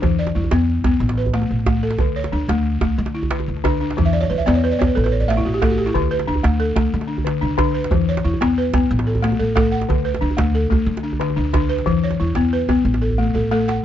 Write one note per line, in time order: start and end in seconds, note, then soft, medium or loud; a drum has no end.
0.00 0.31 E2 medium
0.00 0.35 E3 medium
0.00 0.19 D4 medium
0.00 djembe tone medium
0.00 djembe bass medium
0.19 0.68 D5 medium
0.27 djembe slap medium
0.27 djembe tone medium
0.35 0.50 E2 medium
0.35 0.84 E4 medium
0.44 djembe bass medium
0.51 0.80 E2 loud
0.51 0.83 B3 medium
0.51 djembe slap medium
0.51 djembe tone medium
0.84 0.99 E2 medium
0.84 1.01 B3 medium
0.84 djembe slap medium
0.84 djembe tone medium
0.84 djembe bass medium
1.00 1.43 A1 loud
1.09 djembe slap medium
1.09 djembe tone medium
1.17 1.67 B4 medium
1.26 djembe bass medium
1.34 1.66 A3 medium
1.34 djembe slap medium
1.42 djembe tone medium
1.51 1.93 A1 medium
1.59 djembe slap soft
1.66 2.00 A3 medium
1.66 djembe slap medium
1.66 djembe tone medium
1.66 djembe bass medium
1.74 djembe slap soft
1.83 2.16 A4 medium
1.90 djembe slap medium
1.99 2.28 D2 medium
1.99 2.33 D3 medium
1.99 djembe tone medium
1.99 djembe bass medium
2.16 2.65 C#5 medium
2.24 djembe slap medium
2.24 djembe tone medium
2.32 2.47 D2 medium
2.32 2.82 D4 medium
2.48 2.77 D2 medium
2.48 2.80 A3 medium
2.48 djembe slap medium
2.48 djembe tone medium
2.81 2.97 D2 medium
2.81 3.15 A3 medium
2.81 djembe slap medium
2.81 djembe tone medium
2.81 djembe bass medium
2.98 3.49 D3 loud
3.06 djembe slap medium
3.06 djembe tone medium
3.15 3.64 E4 medium
3.23 djembe bass medium
3.31 3.63 D3 medium
3.31 djembe slap medium
3.40 djembe tone medium
3.48 3.91 D2 medium
3.57 djembe slap soft
3.64 3.97 D3 medium
3.64 3.80 D4 medium
3.64 djembe slap medium
3.64 djembe tone medium
3.64 djembe bass medium
3.81 4.14 D4 medium
3.91 djembe slap medium
3.97 4.26 E2 medium
3.97 4.30 E3 medium
3.97 djembe slap soft
3.97 djembe tone medium
3.97 djembe bass medium
4.05 4.21 E5 medium
4.13 4.29 D5 medium
4.13 djembe slap soft
4.21 4.36 C#5 medium
4.21 djembe tone medium
4.30 4.45 E2 medium
4.30 4.45 B4 medium
4.38 4.53 E5 medium
4.38 djembe slap soft
4.38 djembe bass soft
4.46 4.76 E2 loud
4.46 4.78 B3 medium
4.46 4.62 D5 medium
4.46 djembe slap medium
4.46 djembe tone medium
4.55 4.70 C#5 medium
4.64 4.79 B4 medium
4.71 4.87 D5 medium
4.79 4.95 E2 medium
4.79 4.96 B3 medium
4.79 4.94 C#5 medium
4.79 djembe slap medium
4.79 djembe tone medium
4.79 djembe bass medium
4.87 5.03 B4 medium
4.95 5.39 A1 loud
4.95 5.11 A4 medium
5.04 5.19 B4 medium
5.04 djembe slap medium
5.04 djembe tone soft
5.12 5.27 C#5 medium
5.20 5.35 D5 medium
5.20 djembe slap soft
5.20 djembe bass medium
5.28 5.61 A3 medium
5.28 5.44 E5 medium
5.28 djembe slap medium
5.37 5.52 E4 medium
5.37 djembe tone medium
5.45 5.88 A1 medium
5.45 5.60 F#4 medium
5.54 5.69 G4 medium
5.62 5.95 A3 medium
5.62 5.77 A4 medium
5.62 djembe slap medium
5.62 djembe tone medium
5.62 djembe bass medium
5.70 5.85 F#4 medium
5.78 5.93 G4 medium
5.78 djembe slap soft
5.86 6.01 E4 medium
5.86 djembe slap medium
5.94 6.23 D2 loud
5.94 6.27 D3 medium
5.94 djembe tone medium
5.94 djembe bass medium
6.11 6.60 B4 medium
6.19 djembe slap medium
6.19 djembe tone medium
6.27 6.42 D2 medium
6.27 6.77 D4 medium
6.36 djembe bass medium
6.43 6.73 D2 medium
6.43 6.75 A3 medium
6.43 djembe slap medium
6.43 djembe tone medium
6.60 7.09 A4 medium
6.76 6.91 D2 medium
6.76 7.09 A3 medium
6.76 djembe slap medium
6.76 djembe tone medium
6.76 djembe bass medium
6.94 7.44 D3 loud
7.01 djembe slap medium
7.08 7.40 D4 medium
7.18 djembe bass medium
7.25 7.57 D3 medium
7.25 djembe slap medium
7.41 7.85 D2 medium
7.41 7.56 D4 medium
7.52 djembe slap soft
7.58 7.91 D3 medium
7.58 8.07 D4 medium
7.58 djembe slap medium
7.58 djembe tone medium
7.58 djembe bass medium
7.74 8.08 B4 medium
7.84 djembe slap medium
7.91 8.20 E2 medium
7.91 8.24 E3 medium
7.91 djembe tone medium
7.91 djembe bass medium
8.09 8.58 C#5 medium
8.17 djembe slap medium
8.17 djembe tone medium
8.24 8.39 E2 medium
8.24 8.74 E4 medium
8.34 djembe bass medium
8.41 8.69 E2 medium
8.41 8.73 B3 medium
8.41 djembe slap medium
8.41 djembe tone medium
8.58 9.07 B4 medium
8.74 8.88 E2 medium
8.74 8.90 B3 medium
8.74 djembe slap medium
8.74 djembe tone medium
8.74 djembe bass medium
8.91 9.33 A1 loud
8.99 djembe slap medium
8.99 djembe tone medium
9.07 9.38 A4 medium
9.15 djembe bass medium
9.22 9.54 A3 medium
9.22 djembe slap medium
9.32 djembe tone medium
9.39 9.82 A1 medium
9.39 9.54 A4 medium
9.48 djembe slap soft
9.56 9.89 A3 medium
9.56 10.05 A4 medium
9.56 djembe slap medium
9.56 djembe tone medium
9.56 djembe bass medium
9.65 djembe slap soft
9.72 10.05 F#5 medium
9.82 djembe slap medium
9.89 10.18 D2 loud
9.89 10.22 D3 medium
9.89 djembe tone medium
9.89 djembe bass medium
10.05 10.54 B4 medium
10.14 djembe slap medium
10.14 djembe tone medium
10.21 10.36 D2 medium
10.21 10.71 D4 medium
10.31 djembe bass medium
10.37 10.67 D2 loud
10.37 10.69 A3 medium
10.37 djembe slap medium
10.37 djembe tone medium
10.55 11.04 A4 medium
10.70 10.85 D2 medium
10.70 11.04 A3 medium
10.70 djembe tone medium
10.70 djembe bass medium
10.86 11.38 D3 loud
10.97 djembe slap medium
10.97 djembe tone soft
11.03 11.35 D4 medium
11.13 djembe bass soft
11.20 11.52 D3 medium
11.20 djembe slap medium
11.30 djembe tone medium
11.36 11.80 D2 medium
11.36 11.52 D4 medium
11.46 djembe slap soft
11.53 11.86 D3 medium
11.53 12.03 D4 medium
11.53 djembe slap medium
11.53 djembe tone medium
11.53 djembe bass medium
11.69 12.02 B4 medium
11.78 djembe slap soft
11.86 12.15 E2 medium
11.86 12.19 E3 medium
11.86 djembe slap soft
11.86 djembe tone medium
11.86 djembe bass medium
11.94 djembe slap soft
12.04 12.52 C#5 medium
12.10 djembe slap soft
12.10 djembe tone soft
12.20 12.34 E2 medium
12.20 12.69 E4 medium
12.27 djembe slap soft
12.35 12.65 E2 medium
12.35 12.68 B3 medium
12.35 djembe slap medium
12.35 djembe tone medium
12.53 13.02 B4 medium
12.69 12.83 E2 medium
12.69 12.85 B3 medium
12.69 djembe slap medium
12.69 djembe tone medium
12.69 djembe bass soft
12.85 13.28 A1 loud
12.85 djembe slap soft
12.94 djembe slap soft
12.94 djembe tone soft
13.02 13.33 A4 medium
13.11 djembe bass soft
13.18 13.50 A3 medium
13.18 djembe bass soft
13.35 13.78 A1 medium
13.35 13.50 A4 medium
13.35 djembe bass soft
13.51 13.84 A3 medium
13.51 13.85 A4 medium
13.51 djembe slap medium
13.68 13.85 F#5 medium
13.68 djembe slap medium